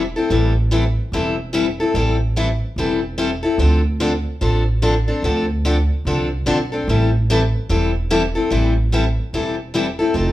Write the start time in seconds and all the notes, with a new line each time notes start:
Already playing: E1
0.16 C4 E4 A4
0.30 A1 E3 G3 C4 E4 A4
0.71 E3 G3 C4 E4 A4
1.12 E1 E3 G3 C4 E4 A4
1.53 E3 G3 C4 E4 A4
1.80 C4 E4 A4
1.94 A1 E3 G3 C4 E4 A4
2.36 E3 G3 C4 E4 A4
2.76 E1 E3 G3 C4 E4 A4
3.18 E3 G3 C4 E4 A4
3.43 C4 E4 A4
3.58 D2 D3 F3 C4 D4 A4
4.00 D3 F3 C4 D4 A4
4.41 A1 D3 F3 C4 D4 A4
4.82 D3 F3 C4 D4 A4
5.08 C4 D4 A4
5.22 D2 D3 F3 C4 D4 A4
5.65 D3 F3 C4 D4 A4
6.05 C2 D3 F3 C4 D4 A4
6.46 B1 D3 F3 C4 D4 A4
6.72 C4 D4 A4
6.88 A1 E3 G3 C4 E4 A4
7.30 E3 G3 C4 E4 A4
7.69 E1 E3 G3 C4 E4 A4
8.10 E3 G3 C4 E4 A4
8.35 C4 E4 A4
8.50 A1 E3 G3 C4 E4 A4
8.92 E3 G3 C4 E4 A4
9.33 E1 E3 G3 C4 E4 A4
9.74 E3 G3 C4 E4 A4
9.99 C4 E4 A4
10.14 F1 F3 C4 D#4 A4